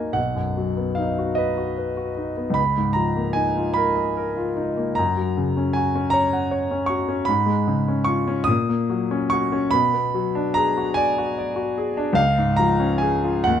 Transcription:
0.00 0.14 D#2 soft
0.00 0.20 F#3 soft
0.00 0.20 A#3 soft
0.00 0.20 D#4 soft
0.00 0.20 F#4 soft
0.00 0.20 A#4 medium
0.00 0.20 D#5 soft
0.00 0.13 F#5 medium
0.00 0.20 G#5 medium
0.13 2.52 B1 soft
0.13 0.96 F#5 medium
0.35 0.69 F#2 soft
0.57 0.90 F#3 soft
0.77 1.10 B3 soft
0.95 1.30 D#4 soft
0.95 1.37 F5 medium
1.19 1.51 F#4 soft
1.35 1.70 B4 medium
1.35 2.56 D#5 medium
1.57 1.90 F#4 soft
1.78 2.10 B4 soft
1.97 2.29 F#4 soft
2.17 2.49 D#4 soft
2.37 2.57 B3 soft
2.50 4.90 C#2 medium
2.54 2.95 B5 medium
2.77 3.09 G#2 soft
2.93 3.28 F3 soft
2.93 3.35 A#5 medium
3.16 3.48 A#3 soft
3.33 3.68 D#4 soft
3.33 3.75 G#5 medium
3.57 3.89 F4 soft
3.74 4.09 A#4 medium
3.74 4.96 B5 medium
3.96 4.29 D#5 medium
4.17 4.50 A#4 medium
4.37 4.70 F4 soft
4.56 4.89 D#4 soft
4.77 4.97 A#3 soft
4.95 7.24 F#2 medium
4.95 5.74 A#5 medium
5.17 5.48 F#3 soft
5.37 5.68 C#3 soft
5.57 5.87 C#4 soft
5.73 6.06 F#4 medium
5.73 6.12 G#5 medium
5.95 6.25 C#4 medium
6.10 6.43 C#5 medium
6.10 6.87 A#5 medium
6.33 6.63 F#5 medium
6.51 6.81 C#5 medium
6.71 7.01 C#4 soft
6.86 7.20 F#4 medium
6.86 7.27 C#6 medium
7.09 7.28 C#4 medium
7.25 8.45 G#2 medium
7.25 8.06 B5 medium
7.46 7.79 G#3 soft
7.68 8.00 C#3 medium
7.88 8.20 C#4 soft
8.04 8.40 F4 medium
8.04 8.47 C#6 medium
8.28 8.48 C#4 medium
8.44 9.68 A#2 medium
8.44 9.29 D#6 loud
8.69 9.02 A#3 medium
8.90 9.23 F#3 medium
9.11 9.44 C#4 medium
9.30 9.65 F#4 medium
9.30 9.72 C#6 loud
9.52 9.73 C#4 medium
9.71 12.14 B2 medium
9.71 10.54 B5 loud
9.94 10.26 B3 medium
10.14 10.47 F#3 medium
10.35 10.68 D4 medium
10.54 10.89 G#4 medium
10.54 10.96 A#5 loud
10.77 11.09 F#4 medium
10.94 11.29 D5 medium
10.94 11.36 G#5 loud
11.18 11.50 F#4 medium
11.38 11.70 D5 medium
11.56 11.89 F#4 medium
11.78 12.10 G#4 medium
11.97 12.17 D4 medium
12.13 13.40 C#2 medium
12.13 12.57 F5 loud
12.38 12.71 G#2 medium
12.56 12.93 F3 medium
12.56 13.00 A#5 medium
12.80 13.14 C#4 medium
12.98 13.37 G#4 medium
12.98 13.45 G#5 medium
13.24 13.47 F4 medium
13.44 13.60 D#2 medium
13.44 13.60 F#5 loud

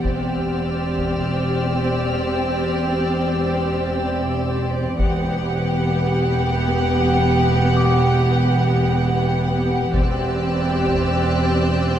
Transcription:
0.02 4.94 E1 soft
0.02 4.95 E2 soft
0.02 4.95 C4 soft
0.02 4.95 G4 soft
0.02 4.98 C5 soft
0.02 4.99 D5 soft
0.02 4.95 D5 soft
0.02 4.64 E6 soft
0.02 4.01 F6 soft
0.02 taiko soft
0.97 taiko soft
4.98 9.90 E1 medium
4.98 9.90 E2 medium
4.98 9.90 B3 medium
4.98 9.90 G4 soft
4.98 9.90 G4 medium
4.98 9.94 B4 medium
4.98 9.94 F#5 medium
4.98 9.90 F#5 medium
4.98 taiko soft
7.77 9.59 D6 medium
9.93 11.99 E1 medium
9.93 11.99 E2 medium
9.93 11.99 C4 medium
9.93 11.99 G4 soft
9.93 11.99 G4 medium
9.93 11.99 C5 medium
9.93 11.99 D5 medium
9.93 11.99 D5 soft
9.93 11.99 E6 soft
9.93 11.99 F#6 soft
9.93 taiko soft
10.87 taiko soft
11.16 11.99 G6 soft

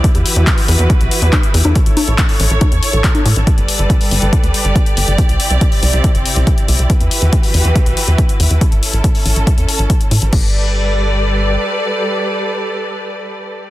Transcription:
0.00 3.43 E4 medium
0.00 1.72 G4 medium
0.04 1.74 E3 medium
0.04 1.74 F#4 medium
0.04 1.74 B4 medium
0.04 kick loud
0.04 closed hi-hat medium
0.15 0.23 E2 medium
0.15 closed hi-hat soft
0.26 open hi-hat loud
0.36 0.44 E2 medium
0.36 closed hi-hat soft
0.47 kick loud
0.47 clap loud
0.47 closed hi-hat medium
0.58 open hi-hat medium
0.68 0.76 E2 medium
0.68 open hi-hat loud
0.79 0.87 E2 medium
0.79 closed hi-hat medium
0.90 kick loud
0.90 closed hi-hat medium
1.01 1.09 B1 medium
1.01 closed hi-hat soft
1.11 open hi-hat loud
1.22 1.30 E2 medium
1.22 closed hi-hat soft
1.33 kick loud
1.33 clap loud
1.33 closed hi-hat medium
1.33 high conga medium
1.43 closed hi-hat soft
1.54 1.62 E2 medium
1.54 open hi-hat loud
1.65 1.73 E2 medium
1.65 closed hi-hat soft
1.65 high conga medium
1.75 5.15 A4 medium
1.75 3.45 C#5 medium
1.75 kick loud
1.75 closed hi-hat medium
1.86 1.94 A1 medium
1.86 closed hi-hat soft
1.97 open hi-hat loud
1.97 high conga medium
2.08 2.16 A1 medium
2.08 closed hi-hat soft
2.18 kick loud
2.18 clap loud
2.18 closed hi-hat medium
2.29 open hi-hat medium
2.40 2.48 A1 medium
2.40 open hi-hat loud
2.50 2.59 A1 medium
2.50 closed hi-hat soft
2.61 kick loud
2.61 closed hi-hat medium
2.61 high conga medium
2.72 2.80 E2 medium
2.72 closed hi-hat soft
2.83 open hi-hat loud
2.93 3.01 A1 medium
2.93 closed hi-hat soft
3.04 kick loud
3.04 clap loud
3.04 closed hi-hat medium
3.15 closed hi-hat soft
3.15 high conga medium
3.26 3.34 A2 medium
3.26 open hi-hat loud
3.36 3.44 A1 medium
3.36 closed hi-hat soft
3.47 5.17 G3 medium
3.47 6.86 G4 medium
3.47 5.17 B4 medium
3.47 6.86 D5 medium
3.47 kick loud
3.47 closed hi-hat medium
3.58 3.66 G1 medium
3.58 closed hi-hat soft
3.68 open hi-hat loud
3.79 3.87 G1 medium
3.79 closed hi-hat soft
3.90 kick loud
3.90 closed hi-hat medium
4.01 open hi-hat medium
4.11 4.19 G1 medium
4.11 open hi-hat loud
4.22 4.30 G1 medium
4.22 closed hi-hat soft
4.33 kick loud
4.33 closed hi-hat medium
4.43 4.51 D2 medium
4.43 closed hi-hat soft
4.54 open hi-hat loud
4.65 4.73 G1 medium
4.65 closed hi-hat soft
4.76 kick loud
4.76 closed hi-hat medium
4.86 closed hi-hat soft
4.97 5.05 G1 medium
4.97 open hi-hat loud
5.08 5.16 G1 medium
5.08 closed hi-hat soft
5.18 6.88 C3 medium
5.18 6.88 C4 medium
5.18 10.29 E4 medium
5.18 kick loud
5.18 closed hi-hat medium
5.29 5.37 C2 medium
5.29 closed hi-hat soft
5.40 open hi-hat loud
5.50 5.59 C2 medium
5.50 closed hi-hat soft
5.61 kick loud
5.61 closed hi-hat medium
5.72 open hi-hat medium
5.83 5.91 C2 medium
5.83 open hi-hat loud
5.93 6.01 C2 medium
5.93 closed hi-hat soft
6.04 kick loud
6.04 closed hi-hat medium
6.15 6.23 G1 medium
6.15 closed hi-hat soft
6.26 open hi-hat medium
6.36 6.44 C2 medium
6.36 closed hi-hat soft
6.47 kick loud
6.47 closed hi-hat medium
6.58 closed hi-hat medium
6.68 6.76 C2 medium
6.68 open hi-hat medium
6.79 6.87 C2 medium
6.79 closed hi-hat soft
6.90 8.60 E3 medium
6.90 8.60 F#4 medium
6.90 8.60 G4 medium
6.90 8.60 B4 medium
6.90 kick loud
6.90 closed hi-hat medium
7.01 7.09 E2 medium
7.01 closed hi-hat soft
7.11 open hi-hat loud
7.22 7.30 E2 medium
7.22 closed hi-hat medium
7.33 kick loud
7.33 closed hi-hat medium
7.43 open hi-hat medium
7.54 7.62 E2 medium
7.54 open hi-hat medium
7.65 7.73 E2 medium
7.65 closed hi-hat soft
7.76 kick loud
7.76 closed hi-hat medium
7.86 7.94 B1 medium
7.86 closed hi-hat medium
7.97 open hi-hat medium
8.08 8.16 E2 medium
8.08 closed hi-hat soft
8.18 kick loud
8.18 closed hi-hat medium
8.29 closed hi-hat medium
8.40 8.48 E2 medium
8.40 open hi-hat medium
8.51 8.59 E2 medium
8.51 closed hi-hat medium
8.61 10.31 C#4 medium
8.61 10.31 A4 medium
8.61 kick loud
8.61 closed hi-hat medium
8.72 8.80 A1 medium
8.72 closed hi-hat medium
8.83 open hi-hat loud
8.93 9.02 A1 medium
8.93 closed hi-hat medium
9.04 kick loud
9.04 closed hi-hat medium
9.15 open hi-hat medium
9.26 9.34 A1 medium
9.26 open hi-hat medium
9.36 9.44 A1 medium
9.36 closed hi-hat medium
9.47 kick loud
9.47 closed hi-hat medium
9.58 9.66 E2 medium
9.58 closed hi-hat medium
9.69 open hi-hat medium
9.79 9.87 A1 medium
9.79 closed hi-hat soft
9.90 kick loud
9.90 closed hi-hat medium
10.01 closed hi-hat medium
10.11 10.19 A2 medium
10.11 open hi-hat medium
10.22 10.30 A1 medium
10.22 closed hi-hat medium
10.33 11.57 G1 medium
10.33 13.70 G3 medium
10.33 13.70 G4 medium
10.33 13.70 A4 medium
10.33 13.70 B4 medium
10.33 13.70 D5 medium
10.33 kick loud
10.33 crash medium

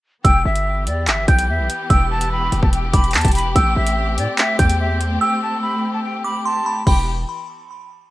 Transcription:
0.24 0.45 E1 loud
0.24 3.52 E3 medium
0.24 3.53 B3 medium
0.24 6.83 G4 loud
0.24 0.43 G5 loud
0.24 1.24 E6 loud
0.24 kick loud
0.24 closed hi-hat medium
0.45 0.88 G1 loud
0.45 0.84 E5 medium
0.56 closed hi-hat medium
0.87 1.09 E2 loud
0.87 1.05 D5 medium
0.87 closed hi-hat medium
1.07 1.27 G1 loud
1.07 1.26 E5 loud
1.07 clap loud
1.07 closed hi-hat medium
1.28 1.50 B1 loud
1.28 1.47 G5 medium
1.28 1.87 G6 medium
1.28 kick loud
1.28 closed hi-hat medium
1.39 closed hi-hat medium
1.49 1.61 E2 loud
1.49 1.68 E5 medium
1.59 1.69 B1 loud
1.70 closed hi-hat medium
1.90 2.50 E1 loud
1.90 2.09 G5 loud
1.90 2.89 E6 loud
1.90 kick loud
1.90 closed hi-hat medium
2.11 2.29 A5 medium
2.21 closed hi-hat medium
2.31 2.61 B5 loud
2.52 2.62 E1 loud
2.52 closed hi-hat medium
2.63 2.92 E1 loud
2.63 2.72 A5 medium
2.63 kick loud
2.73 2.92 G5 medium
2.73 closed hi-hat medium
2.93 3.16 E1 loud
2.93 3.12 B5 medium
2.93 3.13 D6 medium
2.93 kick loud
2.93 closed hi-hat medium
3.04 closed hi-hat medium
3.11 closed hi-hat medium
3.14 3.24 E2 loud
3.14 3.33 A5 medium
3.14 clap loud
3.14 closed hi-hat medium
3.18 closed hi-hat medium
3.21 closed hi-hat medium
3.25 3.54 E1 loud
3.25 kick medium
3.25 closed hi-hat medium
3.28 closed hi-hat soft
3.32 3.54 B5 medium
3.32 closed hi-hat medium
3.32 open hi-hat medium
3.38 closed hi-hat medium
3.56 3.76 A1 loud
3.56 6.83 A3 medium
3.56 6.83 C4 medium
3.56 3.74 G5 loud
3.56 4.55 E6 loud
3.56 kick loud
3.56 closed hi-hat medium
3.76 4.19 A1 loud
3.76 4.15 E5 medium
3.87 closed hi-hat medium
4.18 4.28 A2 loud
4.18 4.37 D5 medium
4.18 closed hi-hat medium
4.38 4.57 E5 loud
4.38 clap loud
4.38 closed hi-hat medium
4.59 5.19 E2 loud
4.59 4.78 G5 medium
4.59 5.18 G6 medium
4.59 kick loud
4.59 closed hi-hat medium
4.70 closed hi-hat medium
4.80 4.99 E5 medium
5.01 closed hi-hat medium
5.21 5.40 G5 loud
5.21 6.21 E6 loud
5.43 5.61 A5 loud
5.62 5.91 B5 medium
5.93 6.03 A5 medium
6.04 6.23 G5 medium
6.24 6.43 B5 medium
6.24 6.44 D6 medium
6.45 6.84 A5 medium
6.45 6.65 C6 medium
6.66 6.86 B5 medium
6.87 7.25 E1 loud
6.87 7.06 E3 medium
6.87 7.06 B3 medium
6.87 7.06 G4 medium
6.87 7.06 G5 medium
6.87 7.06 B5 medium
6.87 kick loud
6.87 crash medium

